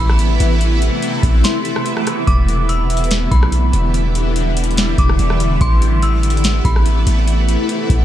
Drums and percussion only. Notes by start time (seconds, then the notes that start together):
0.09 cross-stick
0.19 closed hi-hat
0.40 closed hi-hat
0.61 closed hi-hat
0.82 closed hi-hat
1.02 closed hi-hat
1.23 kick, closed hi-hat
1.44 snare, closed hi-hat
1.65 closed hi-hat
1.76 cross-stick
1.86 closed hi-hat
1.97 cross-stick
2.07 cross-stick, closed hi-hat
2.27 kick, closed hi-hat
2.48 closed hi-hat
2.69 closed hi-hat
2.90 closed hi-hat
2.97 closed hi-hat
3.04 closed hi-hat
3.11 snare, closed hi-hat
3.31 kick, closed hi-hat
3.43 cross-stick
3.52 closed hi-hat
3.73 closed hi-hat
3.94 closed hi-hat
4.15 closed hi-hat
4.36 closed hi-hat
4.57 closed hi-hat
4.64 closed hi-hat
4.71 closed hi-hat
4.77 snare, closed hi-hat
4.98 kick, closed hi-hat
5.09 cross-stick
5.19 closed hi-hat
5.30 cross-stick
5.40 closed hi-hat
5.61 kick, closed hi-hat
5.82 closed hi-hat
6.02 closed hi-hat
6.23 closed hi-hat
6.30 closed hi-hat
6.37 closed hi-hat
6.44 snare, closed hi-hat
6.65 kick, closed hi-hat
6.76 cross-stick
6.86 closed hi-hat
7.07 closed hi-hat
7.27 closed hi-hat
7.49 closed hi-hat
7.69 closed hi-hat
7.90 kick, closed hi-hat